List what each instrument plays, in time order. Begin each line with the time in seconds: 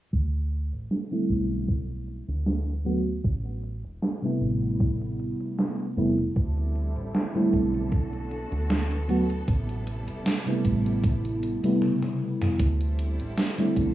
0.13 fingered electric bass D2, kick, closed hi-hat
0.34 closed hi-hat
0.52 closed hi-hat
0.72 fingered electric bass A1, closed hi-hat
0.91 snare, closed hi-hat
1.11 fm electric piano D3 G3 A3 C4 E4, closed hi-hat
1.29 fingered electric bass B1, kick, closed hi-hat
1.51 closed hi-hat
1.68 kick, closed hi-hat
1.90 closed hi-hat
2.08 closed hi-hat
2.28 fingered electric bass D2, closed hi-hat
2.46 snare, closed hi-hat
2.67 closed hi-hat
2.84 fm electric piano D3 F#3 A3 B3 F#4, closed hi-hat
3.06 closed hi-hat
3.24 fingered electric bass A1, kick, closed hi-hat
3.45 closed hi-hat
3.63 closed hi-hat
3.84 fingered electric bass E1, closed hi-hat
4.02 snare, closed hi-hat
4.22 fm electric piano C3 G3 A3 B3 E4, closed hi-hat
4.41 fingered electric bass A1, closed hi-hat
4.63 closed hi-hat
4.80 kick, closed hi-hat
5.02 closed hi-hat
5.20 closed hi-hat
5.40 closed hi-hat
5.59 snare, closed hi-hat
5.80 closed hi-hat
5.97 fingered electric bass E1, fm electric piano C3 G3 A3 B3 E4, closed hi-hat
6.18 closed hi-hat
6.36 fingered electric bass D2, string section D3 G3 C4 E4 A4, kick, closed hi-hat
6.57 closed hi-hat
6.75 closed hi-hat
6.96 fingered electric bass A1, closed hi-hat
7.15 snare, closed hi-hat
7.34 fm electric piano D3 G3 A3 C4 E4, closed hi-hat
7.53 fingered electric bass B1, kick, closed hi-hat
7.74 closed hi-hat
7.92 string section A3 B3 F#4, kick, closed hi-hat
8.13 closed hi-hat
8.31 closed hi-hat
8.52 fingered electric bass D2, closed hi-hat
8.70 snare, closed hi-hat
8.91 closed hi-hat
9.08 fm electric piano D3 F#3 A3 B3 F#4, closed hi-hat
9.30 closed hi-hat
9.48 fingered electric bass A1, string section C3 G3 E4, kick, closed hi-hat
9.69 closed hi-hat
9.87 closed hi-hat
10.08 fingered electric bass E1, closed hi-hat
10.26 snare, closed hi-hat
10.46 fm electric piano C3 G3 A3 B3 E4, closed hi-hat
10.65 fingered electric bass A1, kick, closed hi-hat
10.86 closed hi-hat
11.04 kick, closed hi-hat
11.25 closed hi-hat
11.43 closed hi-hat
11.63 fm electric piano C3 G3 A3 B3 E4, closed hi-hat
11.82 high tom
12.03 high tom
12.42 mid tom
12.60 fingered electric bass D2, string section D3 G3 C4 E4 A4, kick, closed hi-hat
12.81 closed hi-hat
12.99 closed hi-hat
13.19 fingered electric bass A1, closed hi-hat
13.38 snare, closed hi-hat
13.58 fm electric piano D3 G3 A3 C4 E4, closed hi-hat
13.76 fingered electric bass B1, kick, closed hi-hat